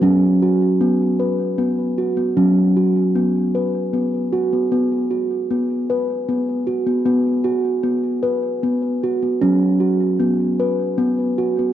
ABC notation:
X:1
M:6/8
L:1/16
Q:3/8=51
K:F#mix
V:1 name="Steel tongue drum"
C2 F2 B,2 B2 B,2 F B, | C2 F2 B,2 B2 B,2 F B, | z2 F2 B,2 B2 B,2 F B, | B,2 F2 B,2 B2 B,2 F B, |
C2 F2 B,2 B2 B,2 F B, |]
V:2 name="Steel tongue drum" clef=bass
F,12 | F,12 | B,12 | z12 |
F,12 |]